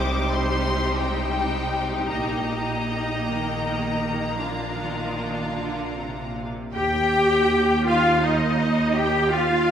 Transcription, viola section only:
Already playing: G3 D#4
2.10 A#3
4.37 D4
6.73 G4
7.86 F4
8.23 D#4
8.95 G4
9.31 F4

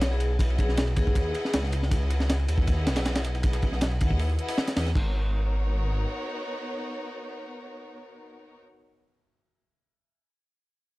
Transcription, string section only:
Already playing: E4 G#4 B4 D#5 F#5
0.40 E4 G#4 B4 D#5 F#5
0.97 E4 G#4 B4 D#5 F#5
1.92 E4 G#4 B4 D#5 F#5
2.49 E4 G#4 B4 D#5 F#5
3.44 E4 G#4 B4 D#5 F#5
4.01 E4 G#4 B4 D#5 F#5
4.39 E4 G#4 B4 D#5 F#5
4.77 E4 G#4 B4 D#5 F#5
4.96 B3 D#4 F#4 A#4 C#5

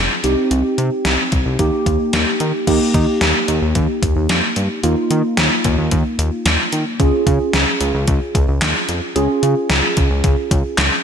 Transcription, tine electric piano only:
Already playing: C4 F4 G#4
0.24 C4 D#4 G4
1.59 A#3 D#4 G4
2.67 A#3 D#4 G4
4.83 A#3 D#4 F4
7.00 C#4 F4 G#4
9.16 C#4 F4 G#4

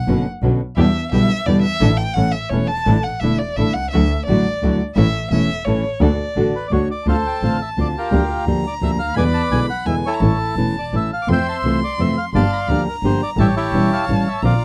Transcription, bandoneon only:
6.55 B4
6.67 D5
6.72 C#5
6.91 D5
7.08 A4 C5 F5
7.27 G5
7.44 F5
7.62 E5
7.81 D5
7.98 F4 G4 A#4
8.67 D5
8.83 E5
8.99 F5
9.16 B4 D5 G#5
9.34 A5
9.52 G#5
9.70 F#5
9.87 E5
10.06 E4 A4 C#5
10.79 D5
10.96 E5
11.13 F5
11.32 C5 E5 G5
11.49 A5
11.84 D5
12.01 E5
12.17 F5
12.35 D5 F5 A5
12.53 A#5
12.88 A#4
13.06 C5
13.23 D5
13.39 G4 C#5 E5
13.56 E4 G4 C#5
13.93 C#5 F5
14.28 E5
14.45 F4 D5

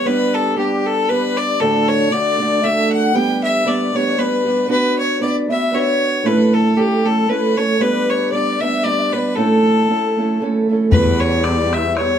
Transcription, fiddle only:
0.06 B4
0.34 A4
0.58 G4
0.86 A4
1.09 B4
1.37 D5
1.61 A4
1.88 C#5
2.12 D5
2.64 E5
2.92 F#5
3.15 G5
3.44 E5
3.68 D5
3.96 C#5
4.19 B4
4.71 B4
4.99 C#5
5.22 D5
5.51 E5
5.75 C#5
6.26 B4
6.54 A4
6.77 G4
7.06 A4
7.29 B4
7.57 C#5
7.81 B4
8.09 C#5
8.32 D5
8.60 E5
8.84 D5
9.13 B4
9.36 A4
10.92 B4
11.20 C#5
11.44 D5
11.73 E5
11.97 C#5

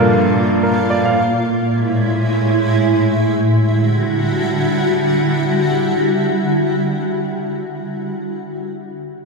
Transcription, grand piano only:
Already playing: G2 A#3 D4 F4 A4 A#4
0.63 A#4
0.90 D5
1.05 F5

